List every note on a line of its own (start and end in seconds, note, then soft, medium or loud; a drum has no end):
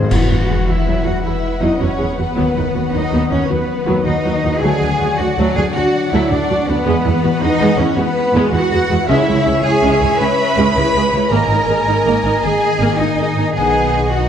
0.00 0.13 G#2 medium
0.00 0.10 G#2 medium
0.00 0.13 D#3 soft
0.00 0.29 G#3 soft
0.00 0.13 D#4 soft
0.00 0.11 G#4 medium
0.00 0.85 G#4 soft
0.00 0.13 D#5 soft
0.00 0.13 D#6 soft
0.10 0.18 E2 medium
0.10 2.39 E3 medium
0.10 0.27 F#3 medium
0.10 0.28 E4 medium
0.10 0.68 F#4 medium
0.10 4.57 B4 medium
0.10 0.67 F#5 medium
0.10 4.57 F#5 medium
0.10 0.68 F#5 medium
0.10 concert bass drum medium
0.10 crash medium
0.28 0.37 E2 soft
0.28 0.36 F#3 soft
0.28 1.42 G#3 soft
0.28 0.36 F#4 soft
0.48 0.56 E2 soft
0.48 0.56 F#3 soft
0.48 1.61 F#4 soft
0.48 0.56 G#4 soft
0.67 0.75 E2 medium
0.67 0.75 F#3 soft
0.67 1.05 E4 medium
0.67 0.75 F#4 medium
0.67 1.05 E5 medium
0.67 1.04 E5 soft
0.86 0.93 E2 medium
0.86 1.04 F#3 medium
0.86 1.04 E4 medium
0.86 1.98 G#4 medium
1.04 1.12 E2 medium
1.04 1.13 F#3 medium
1.04 1.13 F#4 medium
1.04 1.24 F#4 medium
1.04 1.80 E5 medium
1.04 1.24 F#5 medium
1.23 1.32 E2 medium
1.23 1.32 F#3 medium
1.23 1.61 E4 medium
1.23 2.38 E4 medium
1.23 1.33 G#4 medium
1.23 1.61 E5 medium
1.43 2.38 G#3 soft
1.60 1.68 E2 medium
1.60 1.78 F#3 medium
1.60 1.81 D#4 medium
1.60 1.79 E4 medium
1.60 2.73 F#4 medium
1.60 1.81 D#5 medium
1.79 1.88 E2 soft
1.79 1.87 F#3 medium
1.79 2.17 C#4 medium
1.79 1.87 F#4 medium
1.79 2.18 C#5 medium
1.79 2.17 E5 medium
1.97 2.07 E2 medium
1.97 2.05 F#3 medium
1.97 2.06 G#4 medium
1.97 2.38 G#4 medium
2.17 2.26 E2 soft
2.17 2.25 F#3 medium
2.17 2.91 B3 medium
2.17 2.25 F#4 medium
2.17 2.93 B4 medium
2.17 2.92 B4 medium
2.17 2.39 E5 medium
2.35 2.45 D#2 medium
2.35 3.48 D#3 medium
2.35 2.53 F#3 medium
2.35 2.53 B3 medium
2.56 2.64 D#2 medium
2.56 2.63 F#3 medium
2.56 3.67 F#3 soft
2.56 2.64 D#4 medium
2.74 2.82 D#2 medium
2.74 2.81 F#3 soft
2.74 3.11 F#4 medium
2.74 2.81 F#4 medium
2.93 3.01 D#2 medium
2.93 3.01 F#3 soft
2.93 3.30 D#4 loud
2.93 3.00 D#4 medium
2.93 3.29 B4 medium
2.93 3.30 D#5 medium
3.11 3.20 D#2 medium
3.11 3.29 F#3 medium
3.11 3.29 B3 medium
3.11 3.85 F#4 medium
3.30 3.39 D#2 medium
3.30 3.37 F#3 medium
3.30 3.49 C#4 medium
3.30 3.37 D#4 medium
3.30 4.04 B4 medium
3.30 3.49 C#5 medium
3.49 3.57 D#2 medium
3.49 4.63 D#3 medium
3.49 3.57 F#3 medium
3.49 4.06 B3 medium
3.49 3.57 F#4 medium
3.49 4.06 B4 medium
3.49 4.05 B4 medium
3.68 4.79 F#3 medium
3.86 3.94 D#2 medium
3.86 4.04 F#3 medium
3.86 4.04 B3 medium
3.86 4.23 F#4 medium
4.05 4.13 D#2 medium
4.05 4.14 F#3 medium
4.05 4.60 D#4 loud
4.05 4.13 D#4 medium
4.05 4.41 B4 medium
4.05 4.61 D#5 medium
4.24 4.32 D#2 medium
4.24 4.32 F#3 medium
4.24 4.97 F#4 medium
4.24 4.32 F#4 medium
4.42 4.51 D#2 medium
4.42 4.51 F#3 medium
4.42 4.51 D#4 medium
4.42 4.63 B4 medium
4.60 4.68 D2 medium
4.60 6.86 D3 medium
4.60 4.80 F#3 medium
4.60 4.80 A3 medium
4.60 5.18 G#4 loud
4.60 6.81 D5 medium
4.60 9.04 F#5 medium
4.60 5.16 G#5 medium
4.60 5.17 G#5 loud
4.80 4.89 D2 medium
4.80 5.93 F#3 medium
4.80 4.89 F#3 medium
4.80 4.89 D4 medium
4.98 5.07 D2 medium
4.98 5.08 F#3 medium
4.98 5.35 F#4 medium
4.98 5.08 F#4 medium
5.18 5.27 D2 medium
5.18 5.27 F#3 medium
5.18 5.26 D4 medium
5.18 5.55 F#4 medium
5.18 5.55 D5 medium
5.18 5.55 F#5 medium
5.18 5.56 F#5 medium
5.37 5.45 D2 medium
5.37 5.54 F#3 loud
5.37 5.54 A3 medium
5.37 6.12 F#4 medium
5.56 5.64 D2 medium
5.56 5.64 F#3 medium
5.56 5.64 D4 medium
5.56 5.63 G#4 loud
5.56 6.30 D5 medium
5.56 5.64 G#5 medium
5.56 5.74 G#5 medium
5.74 5.83 D2 medium
5.74 5.83 F#3 medium
5.74 6.87 D4 medium
5.74 6.11 F#4 loud
5.74 5.84 F#4 medium
5.74 6.11 F#5 medium
5.95 9.11 F#3 medium
6.11 6.20 D2 medium
6.11 6.30 F#3 loud
6.11 6.29 A3 medium
6.11 6.30 E4 loud
6.11 6.48 F#4 medium
6.11 6.30 E5 medium
6.31 6.39 D2 medium
6.31 6.39 F#3 medium
6.31 6.67 D4 loud
6.31 6.39 D4 medium
6.31 6.66 D5 medium
6.31 6.68 D5 medium
6.31 6.66 D5 medium
6.49 6.57 D2 medium
6.49 6.57 F#3 medium
6.49 7.22 F#4 medium
6.49 6.57 F#4 medium
6.68 6.76 D2 medium
6.68 6.76 F#3 medium
6.68 7.42 B3 loud
6.68 6.76 D4 medium
6.68 7.40 B4 medium
6.68 7.42 B4 loud
6.68 6.88 D5 medium
6.85 6.94 E2 loud
6.85 9.11 E3 medium
6.85 7.02 G#3 medium
6.85 7.02 B3 loud
6.85 9.05 B4 medium
7.03 7.13 E2 medium
7.03 7.11 G#3 medium
7.03 8.15 G#3 medium
7.03 7.11 E4 medium
7.22 7.31 E2 medium
7.22 7.30 G#3 medium
7.22 7.30 F#4 medium
7.22 8.33 F#4 medium
7.41 7.49 E2 medium
7.41 7.48 G#3 medium
7.41 7.78 D#4 loud
7.41 7.48 E4 medium
7.41 7.78 B4 medium
7.41 7.78 D#5 loud
7.41 7.79 D#5 loud
7.60 7.67 E2 loud
7.60 7.78 G#3 medium
7.60 7.77 B3 loud
7.60 8.71 G#4 medium
7.78 7.85 E2 medium
7.78 7.87 G#3 medium
7.78 7.97 C#4 loud
7.78 7.87 E4 medium
7.78 8.52 B4 medium
7.78 7.86 C#5 medium
7.78 7.98 C#5 medium
7.95 8.03 E2 medium
7.95 8.05 G#3 medium
7.95 8.53 B3 loud
7.95 9.45 E4 medium
7.95 8.04 F#4 medium
7.95 8.51 B4 loud
7.95 8.54 B4 loud
8.16 9.26 G#3 medium
8.33 8.40 E2 loud
8.33 8.52 G#3 loud
8.33 8.52 B3 loud
8.33 9.10 F#4 medium
8.51 8.59 E2 medium
8.51 8.60 G#3 medium
8.51 8.60 E4 medium
8.51 9.08 F#4 loud
8.51 8.89 B4 medium
8.51 9.07 F#5 loud
8.71 8.79 E2 medium
8.71 8.79 G#3 medium
8.71 8.79 F#4 medium
8.71 9.83 G#4 medium
8.89 8.96 E2 medium
8.89 8.97 G#3 medium
8.89 8.97 E4 medium
8.89 9.10 B4 medium
9.08 9.16 C#2 loud
9.08 11.33 C#3 medium
9.08 9.61 C#3 medium
9.08 9.25 G#3 loud
9.08 9.26 C#4 medium
9.08 9.63 E4 loud
9.08 11.28 C#5 medium
9.08 9.64 E5 loud
9.08 11.32 E5 loud
9.08 9.63 E5 loud
9.27 9.34 C#2 medium
9.27 10.37 G#3 medium
9.27 9.35 G#3 medium
9.27 9.35 E4 medium
9.45 9.53 C#2 medium
9.45 9.53 G#3 medium
9.45 10.57 E4 medium
9.45 9.53 G#4 medium
9.62 9.70 C#2 medium
9.62 9.72 G#3 medium
9.62 9.72 E4 medium
9.62 10.18 G#4 loud
9.62 10.01 C#5 medium
9.62 10.18 G#5 loud
9.62 10.20 G#5 loud
9.82 9.90 C#2 loud
9.82 10.00 G#3 loud
9.82 10.00 C#4 loud
9.82 10.92 G#4 medium
10.00 10.08 C#2 medium
10.00 10.09 G#3 medium
10.00 10.08 E4 medium
10.00 10.75 C#5 medium
10.19 10.27 C#2 medium
10.19 10.28 G#3 medium
10.19 11.34 C#4 medium
10.19 10.28 G#4 medium
10.19 11.32 B4 loud
10.19 11.31 B5 loud
10.19 11.29 B5 loud
10.38 13.57 G#3 medium
10.56 10.63 C#2 medium
10.56 10.75 G#3 medium
10.56 10.75 C#4 medium
10.56 11.33 E4 medium
10.75 10.82 C#2 medium
10.75 10.84 G#3 medium
10.75 10.85 E4 medium
10.75 11.12 C#5 medium
10.93 11.00 C#2 medium
10.93 11.03 G#3 medium
10.93 11.68 G#4 medium
10.93 11.03 G#4 medium
11.10 11.18 C#2 medium
11.10 11.33 C#5 medium
11.15 11.23 G#3 medium
11.15 11.22 E4 medium
11.29 11.37 G#1 loud
11.29 13.58 G#2 medium
11.29 11.49 A#3 loud
11.29 12.43 A#4 loud
11.29 13.51 D#5 medium
11.29 13.51 G#5 medium
11.29 12.44 A#5 loud
11.48 11.56 G#1 medium
11.48 12.61 A#3 medium
11.48 11.59 A#3 medium
11.48 11.58 D#4 medium
11.66 11.74 G#1 medium
11.66 11.76 A#3 medium
11.66 11.76 G#4 medium
11.66 12.80 G#4 medium
11.85 11.93 G#1 medium
11.85 11.95 A#3 medium
11.85 11.95 D#4 medium
11.85 12.24 D#5 medium
12.04 12.12 G#1 loud
12.04 12.24 A#3 loud
12.04 13.16 A#4 medium
12.23 12.31 G#1 medium
12.23 12.32 A#3 medium
12.23 12.33 D#4 medium
12.23 12.98 D#5 medium
12.42 12.50 G#1 medium
12.42 13.57 D#3 medium
12.42 12.51 A#3 medium
12.42 12.98 G#4 loud
12.42 12.51 G#4 medium
12.42 12.98 G#5 medium
12.42 12.99 G#5 loud
12.62 13.57 A#3 medium
12.79 12.87 G#1 medium
12.79 12.99 A#3 medium
12.79 13.57 G#4 medium
12.97 13.06 G#1 medium
12.97 13.07 A#3 medium
12.97 13.56 D#4 loud
12.97 13.08 D#4 medium
12.97 13.53 D#5 medium
12.97 13.55 D#5 medium
12.97 13.35 D#5 medium
13.16 13.24 G#1 medium
13.16 13.27 A#3 medium
13.16 13.27 G#4 medium
13.16 13.57 A#4 medium
13.35 13.43 G#1 medium
13.35 13.46 A#3 medium
13.35 13.45 D#4 medium
13.35 14.11 D#5 medium
13.53 14.29 B1 medium
13.53 14.29 B2 medium
13.53 14.08 B3 medium
13.53 14.08 D#4 medium
13.53 14.10 G#4 loud
13.53 14.08 D#5 medium
13.53 14.08 F#5 medium
13.53 14.10 G#5 loud
13.53 14.11 G#5 medium
13.74 14.29 B3 medium
13.93 14.29 F#4 medium
14.11 14.29 B3 medium
14.11 14.29 D#4 medium
14.11 14.29 F#4 medium
14.11 14.29 D#5 medium
14.11 14.29 F#5 medium